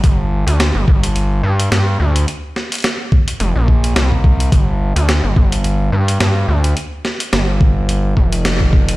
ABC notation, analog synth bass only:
X:1
M:4/4
L:1/16
Q:"Swing 16ths" 1/4=107
K:Gm
V:1 name="Analog synth bass" clef=bass
G,,,3 D,,2 G,,, G,,,4 G,,2 G,,2 D,,2 | z8 F,,, B,,,3 C,,4 | G,,,3 D,,2 G,,, G,,,4 G,,2 G,,2 D,,2 | z4 G,,,6 F,,,6 |]